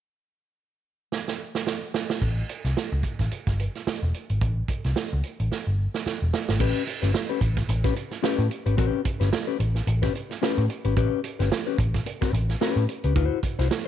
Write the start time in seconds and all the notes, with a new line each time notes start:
1.12 snare
1.28 snare
1.55 snare
1.67 snare
1.94 snare
2.10 snare
2.22 A1, kick, crash
2.49 closed hi-hat
2.65 C2, snare, closed hi-hat
2.77 snare
2.92 C#2
3.03 kick, closed hi-hat
3.19 A1, kick, snare, closed hi-hat
3.31 muted picked electric bass stroke, closed hi-hat
3.47 G1, kick, snare, closed hi-hat
3.60 closed hi-hat
3.75 snare, closed hi-hat
3.87 muted picked electric bass stroke, snare
4.03 E1
4.14 closed hi-hat
4.29 G#1, closed hi-hat
4.41 A1, kick, closed hi-hat
4.68 kick, closed hi-hat
4.84 C2, snare, closed hi-hat
4.96 snare
5.13 C#2
5.23 closed hi-hat
5.40 A1, closed hi-hat
5.51 muted picked electric bass stroke, snare
5.67 G1
5.94 snare
6.06 muted picked electric bass stroke, snare
6.22 E1
6.33 snare
6.48 G#1, snare
6.60 A1 C#4 G4 B4, kick, crash
6.87 muted clean electric guitar stroke, closed hi-hat
7.02 G1 C#4 G4 B4, snare, closed hi-hat
7.14 muted clean electric guitar stroke, snare
7.29 C#4 G4 B4
7.41 A1, kick, closed hi-hat
7.57 muted clean electric guitar stroke, kick, snare, closed hi-hat
7.69 A1, muted clean electric guitar stroke, closed hi-hat
7.84 C#4 G4 B4, kick, snare
7.96 muted clean electric guitar stroke, closed hi-hat
8.11 muted clean electric guitar stroke, snare, closed hi-hat
8.22 C#4 G4 B4, snare
8.39 A2, closed hi-hat
8.50 muted clean electric guitar stroke, closed hi-hat
8.66 G#1 C#4 G4 B4, closed hi-hat
8.77 A1 C#4 G4 B4, kick, closed hi-hat
9.05 muted clean electric guitar stroke, kick, closed hi-hat
9.20 G1 C#4 G4 B4, snare, closed hi-hat
9.32 muted clean electric guitar stroke, snare
9.47 C#4 G4 B4
9.59 A1, muted clean electric guitar stroke, closed hi-hat
9.75 muted clean electric guitar stroke, snare, closed hi-hat
9.87 A1, muted clean electric guitar stroke, closed hi-hat
10.02 C#4 G4 B4, kick, snare
10.15 muted clean electric guitar stroke, closed hi-hat
10.30 muted clean electric guitar stroke, snare, closed hi-hat
10.42 C#4 G4 B4, snare
10.58 A2, closed hi-hat
10.69 muted clean electric guitar stroke, closed hi-hat
10.85 G#1 C#4 G4 B4, closed hi-hat
10.96 A1 C#4 G4 B4, kick, closed hi-hat
11.24 muted clean electric guitar stroke, closed hi-hat
11.39 G1 C#4 G4 B4, snare, closed hi-hat
11.52 snare
11.67 C#4 G4 B4, closed hi-hat
11.78 A1, muted clean electric guitar stroke, kick, closed hi-hat
11.94 muted clean electric guitar stroke, kick, snare, closed hi-hat
12.06 muted clean electric guitar stroke, closed hi-hat
12.21 C#4 G4 B4, kick, snare, closed hi-hat
12.33 A1, muted clean electric guitar stroke, closed hi-hat
12.49 muted clean electric guitar stroke, snare, closed hi-hat
12.61 C#4 G4 B4, snare
12.76 A2, closed hi-hat
12.89 muted clean electric guitar stroke, closed hi-hat
13.04 C#2 C#4 G4 B4, closed hi-hat
13.15 D2 E4 F#4 C5, kick, closed hi-hat
13.43 muted clean electric guitar stroke, kick, closed hi-hat
13.59 C2 E4 F#4 C5, snare, closed hi-hat
13.70 muted clean electric guitar stroke, snare